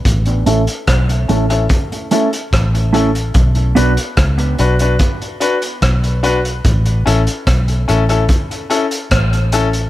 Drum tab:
HH |xxxxxxxxxxxxxxxx|xxxxxxxxxxxxxxxx|xxxxxxxxxxxxxxxx|
SD |----r-------r---|----r-------r---|----r-------r---|
BD |o---o---o---o---|o---o---o---o---|o---o---o---o---|